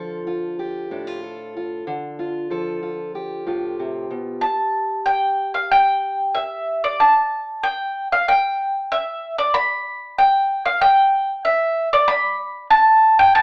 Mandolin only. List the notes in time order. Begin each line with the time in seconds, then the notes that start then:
4.41 A5
5.06 G5
5.54 F5
5.71 G5
6.35 E5
6.84 D5
7.00 A5
7.63 G5
8.12 F5
8.28 G5
8.92 E5
9.38 D5
9.54 B5
10.18 G5
10.65 F5
10.81 G5
11.45 E5
11.93 D5
12.08 B5
12.71 A5
13.19 G5
13.35 A5